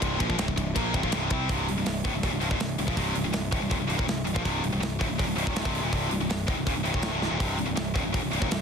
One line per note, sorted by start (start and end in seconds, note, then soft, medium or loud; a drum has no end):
0.00 0.19 C1 medium
0.00 0.18 C2 medium
0.00 0.19 G2 loud
0.00 0.19 C3 loud
0.00 kick loud
0.00 ride loud
0.18 0.29 A#1 loud
0.18 0.27 A#2 loud
0.18 0.27 F3 loud
0.18 kick loud
0.18 ride medium
0.28 0.38 A#1 loud
0.28 0.36 A#2 medium
0.28 0.37 F3 loud
0.28 kick medium
0.37 0.48 C1 loud
0.37 0.45 C2 medium
0.37 0.45 G2 loud
0.37 snare loud
0.37 ride loud
0.46 0.57 C1 medium
0.46 0.55 C2 medium
0.46 0.55 G2 medium
0.46 kick medium
0.56 0.74 C1 medium
0.56 0.71 C2 medium
0.56 0.71 G2 medium
0.56 kick medium
0.56 ride medium
0.75 0.93 A#1 medium
0.75 0.92 A#2 medium
0.75 0.92 F3 loud
0.75 0.93 A#3 loud
0.75 kick loud
0.75 ride loud
0.93 1.02 C1 medium
0.93 1.02 C2 medium
0.93 1.02 G2 loud
0.93 kick loud
0.93 ride medium
1.02 1.11 A#1 loud
1.02 1.11 A#2 medium
1.02 1.12 F3 medium
1.02 kick medium
1.12 1.30 C1 medium
1.12 1.30 C2 medium
1.12 1.30 G2 loud
1.12 1.30 C3 loud
1.12 snare loud
1.12 ride medium
1.30 1.48 C2 medium
1.30 1.49 C3 medium
1.30 1.49 G3 medium
1.30 1.49 C4 loud
1.30 kick loud
1.30 ride medium
1.49 1.66 C1 medium
1.49 1.67 C2 medium
1.49 1.67 G2 medium
1.49 1.67 C3 medium
1.49 kick loud
1.49 open hi-hat medium
1.68 1.77 C1 medium
1.68 1.76 C2 medium
1.68 1.76 G2 medium
1.68 open hi-hat medium
1.77 1.85 C1 medium
1.77 1.85 C2 medium
1.77 1.85 G2 medium
1.86 2.03 C1 medium
1.86 2.01 C2 medium
1.86 2.01 G2 medium
1.86 snare loud
1.86 open hi-hat medium
2.04 2.13 D1 medium
2.04 2.13 D2 medium
2.04 2.14 A2 medium
2.04 kick loud
2.04 open hi-hat medium
2.13 2.22 C1 medium
2.13 2.23 C2 medium
2.13 2.23 G2 medium
2.23 2.30 D#1 medium
2.23 2.31 D#2 loud
2.23 2.32 A#2 medium
2.23 kick loud
2.23 open hi-hat medium
2.31 2.39 C1 medium
2.31 2.39 C2 medium
2.31 2.40 G2 medium
2.40 2.49 C1 medium
2.40 2.49 C2 medium
2.40 2.50 G2 loud
2.40 open hi-hat medium
2.50 2.57 D#1 medium
2.50 2.59 D#2 medium
2.50 2.59 A#2 loud
2.50 kick loud
2.58 2.76 C1 medium
2.58 2.74 C2 medium
2.58 2.75 G2 medium
2.58 snare loud
2.58 open hi-hat medium
2.78 2.86 C1 medium
2.78 2.86 C2 medium
2.78 2.87 G2 medium
2.78 open hi-hat medium
2.87 2.96 A#1 medium
2.87 2.96 A#2 medium
2.87 2.96 F3 loud
2.87 kick loud
2.96 3.14 C1 medium
2.96 3.13 C2 medium
2.96 3.13 G2 medium
2.96 3.15 C3 loud
2.96 kick medium
2.96 open hi-hat medium
3.15 3.23 C1 medium
3.15 3.23 C2 medium
3.15 3.23 G2 medium
3.15 open hi-hat medium
3.24 3.33 C1 medium
3.24 3.31 C2 medium
3.24 3.32 G2 medium
3.33 3.51 C1 medium
3.33 3.48 C2 medium
3.33 3.48 G2 medium
3.33 snare loud
3.33 open hi-hat medium
3.51 3.60 D1 medium
3.51 3.60 D2 medium
3.51 3.61 A2 loud
3.51 kick loud
3.51 open hi-hat medium
3.61 3.69 C1 medium
3.61 3.70 C2 medium
3.61 3.71 G2 medium
3.70 3.78 D#1 medium
3.70 3.79 D#2 loud
3.70 3.79 A#2 loud
3.70 kick loud
3.70 open hi-hat medium
3.79 3.88 C1 medium
3.79 3.87 C2 medium
3.79 3.87 G2 medium
3.88 3.98 C1 medium
3.88 3.97 C2 medium
3.88 3.97 G2 loud
3.88 open hi-hat medium
3.97 4.07 D#1 medium
3.97 4.06 D#2 medium
3.97 4.07 A#2 loud
3.97 kick loud
4.07 4.25 C1 medium
4.07 4.22 C2 medium
4.07 4.22 G2 medium
4.07 snare loud
4.07 open hi-hat medium
4.25 4.34 C1 medium
4.25 4.34 C2 medium
4.25 4.35 G2 medium
4.25 open hi-hat medium
4.34 4.44 A#1 medium
4.34 4.43 A#2 medium
4.34 4.44 F3 medium
4.34 kick loud
4.44 4.62 C1 medium
4.44 4.62 C2 medium
4.44 4.62 G2 medium
4.44 4.63 C3 loud
4.44 kick medium
4.44 open hi-hat medium
4.63 4.71 C1 medium
4.63 4.71 C2 medium
4.63 4.72 G2 medium
4.63 open hi-hat medium
4.72 4.79 C1 medium
4.72 4.79 C2 medium
4.72 4.80 G2 medium
4.79 4.97 C1 medium
4.79 4.96 C2 medium
4.79 4.96 G2 medium
4.79 snare loud
4.79 open hi-hat medium
4.99 5.08 D1 loud
4.99 5.08 D2 medium
4.99 5.08 A2 medium
4.99 kick loud
4.99 open hi-hat medium
5.08 5.17 C1 medium
5.08 5.18 C2 medium
5.08 5.18 G2 medium
5.18 5.26 D#1 medium
5.18 5.26 D#2 medium
5.18 5.27 A#2 loud
5.18 kick loud
5.18 open hi-hat medium
5.26 5.34 C1 medium
5.26 5.34 C2 medium
5.26 5.35 G2 medium
5.35 5.44 C1 medium
5.35 5.45 C2 medium
5.35 5.45 G2 loud
5.35 open hi-hat medium
5.45 5.63 D#1 loud
5.45 5.62 D#2 medium
5.45 5.63 A#2 medium
5.45 5.64 D#3 medium
5.45 kick loud
5.56 snare loud
5.56 open hi-hat medium
5.62 5.82 C1 medium
5.62 5.81 C2 medium
5.62 5.82 G2 loud
5.62 5.82 C3 loud
5.62 kick loud
5.75 open hi-hat medium
5.82 5.91 D#1 medium
5.82 5.92 D#2 medium
5.82 5.92 A#2 medium
5.92 6.09 C1 medium
5.92 6.10 C2 loud
5.92 6.10 G2 medium
5.92 6.11 C3 loud
5.92 kick loud
5.92 open hi-hat medium
6.11 6.19 C1 medium
6.11 6.19 C2 medium
6.11 6.20 G2 medium
6.11 open hi-hat medium
6.20 6.28 C1 medium
6.20 6.28 C2 medium
6.20 6.29 G2 medium
6.29 6.46 C1 medium
6.29 6.44 C2 medium
6.29 6.45 G2 medium
6.29 snare loud
6.29 open hi-hat medium
6.47 6.56 D1 medium
6.47 6.56 D2 medium
6.47 6.56 A2 medium
6.47 kick loud
6.47 open hi-hat medium
6.57 6.66 C1 medium
6.57 6.66 C2 medium
6.57 6.66 G2 medium
6.66 6.75 D#1 medium
6.66 6.75 D#2 medium
6.66 6.75 A#2 loud
6.66 kick loud
6.66 open hi-hat medium
6.75 6.84 C1 medium
6.75 6.82 C2 medium
6.75 6.83 G2 medium
6.83 6.93 C1 medium
6.83 6.92 C2 medium
6.83 6.92 G2 medium
6.83 open hi-hat medium
6.92 7.11 D#1 medium
6.92 7.10 D#2 medium
6.92 7.11 A#2 medium
6.92 7.12 D#3 medium
6.92 kick loud
7.02 snare loud
7.02 open hi-hat medium
7.10 7.30 C1 medium
7.10 7.29 C2 medium
7.10 7.30 G2 medium
7.10 7.30 C3 medium
7.22 snare medium
7.29 7.39 D#1 medium
7.29 7.38 D#2 medium
7.29 7.38 A#2 medium
7.38 7.57 C1 medium
7.38 7.56 C2 medium
7.38 7.56 G2 medium
7.38 7.58 C3 medium
7.38 kick loud
7.38 open hi-hat medium
7.57 7.68 C1 medium
7.57 7.65 C2 medium
7.57 7.65 G2 medium
7.57 open hi-hat medium
7.66 7.77 C1 medium
7.66 7.74 C2 medium
7.66 7.75 G2 medium
7.76 7.94 C1 medium
7.76 7.91 C2 medium
7.76 7.91 G2 medium
7.76 snare loud
7.76 open hi-hat medium
7.94 8.04 D1 medium
7.94 8.03 D2 medium
7.94 8.03 A2 loud
7.94 kick loud
7.94 open hi-hat medium
8.03 8.13 C1 medium
8.03 8.12 C2 medium
8.03 8.13 G2 medium
8.13 8.22 D#1 medium
8.13 8.21 D#2 medium
8.13 8.21 A#2 loud
8.13 kick loud
8.13 open hi-hat medium
8.21 8.31 C1 medium
8.21 8.30 C2 medium
8.21 8.31 G2 medium
8.31 8.41 C1 medium
8.31 8.39 C2 medium
8.31 8.40 G2 loud
8.31 open hi-hat medium
8.40 8.50 D#1 medium
8.40 8.49 D#2 medium
8.40 8.50 A#2 loud
8.40 kick loud
8.51 8.62 C1 medium
8.51 8.62 C2 medium
8.51 8.62 G2 medium
8.51 snare loud
8.51 open hi-hat medium